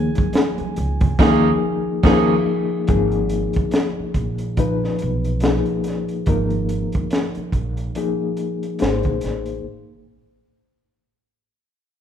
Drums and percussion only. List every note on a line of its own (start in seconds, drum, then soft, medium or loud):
0.15 kick medium
0.15 closed hi-hat medium
0.15 high conga medium
0.33 snare loud
0.33 closed hi-hat medium
0.33 muted conga soft
0.58 closed hi-hat soft
0.58 high conga medium
0.76 closed hi-hat medium
0.76 muted conga soft
1.01 kick medium
1.01 closed hi-hat medium
1.01 low conga medium
1.19 kick loud
1.19 snare loud
1.19 crash medium
2.03 kick loud
2.03 snare loud
2.03 crash medium
2.87 kick loud
2.87 closed hi-hat medium
3.12 closed hi-hat soft
3.29 closed hi-hat medium
3.53 kick medium
3.53 closed hi-hat soft
3.71 snare loud
3.71 closed hi-hat medium
4.14 kick medium
4.14 closed hi-hat medium
4.38 closed hi-hat soft
4.57 kick medium
4.57 closed hi-hat medium
4.84 snare soft
4.99 closed hi-hat medium
5.24 closed hi-hat soft
5.40 snare loud
5.40 closed hi-hat medium
5.65 closed hi-hat soft
5.84 snare soft
5.84 closed hi-hat medium
6.08 closed hi-hat soft
6.26 kick loud
6.26 closed hi-hat medium
6.50 closed hi-hat soft
6.69 closed hi-hat medium
6.92 kick medium
6.92 closed hi-hat soft
7.10 snare medium
7.10 closed hi-hat medium
7.35 closed hi-hat soft
7.52 kick medium
7.52 closed hi-hat medium
7.77 closed hi-hat soft
7.95 closed hi-hat medium
8.37 closed hi-hat medium
8.63 closed hi-hat soft
8.79 snare medium
8.79 closed hi-hat medium
9.03 kick medium
9.03 closed hi-hat soft
9.21 snare soft
9.21 closed hi-hat medium
9.46 closed hi-hat soft